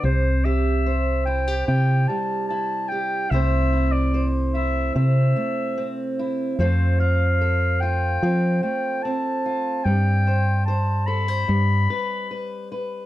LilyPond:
<<
  \new Staff \with { instrumentName = "Clarinet" } { \time 4/4 \key c \major \tempo 4 = 73 c''8 e''4 g''8 g''8 a''8 a''8 g''8 | e''8. d''8 r16 e''8 e''4. r8 | c''8 f''4 g''4 g''8 a''4 | g''4 a''8 b''2 r8 | }
  \new Staff \with { instrumentName = "Steel-string acoustic guitar" } { \time 4/4 \key c \major << { r8 g'8 c''8 e'16 g'16 e'4 e'8 g'8 | <a c' e' c''>8 e'8 c''8 e'8 c'4 c'8 e'8 | <a c' f' a'>8 f'8 a'8 f'8 c'4 c'8 f'8 | r8 c''8 c''8 a'16 c''16 r8 b'8 b'8 b'8 | } \\ { c2~ c8 g4. | c2~ c8 a4. | f2~ f8 a4. | g2 g2 | } >> }
  \new Staff \with { instrumentName = "FM bass" } { \clef bass \time 4/4 \key c \major c,2 c8 r4. | c,2 c8 r4. | f,2 f8 r4. | g,2 g,8 r4. | }
>>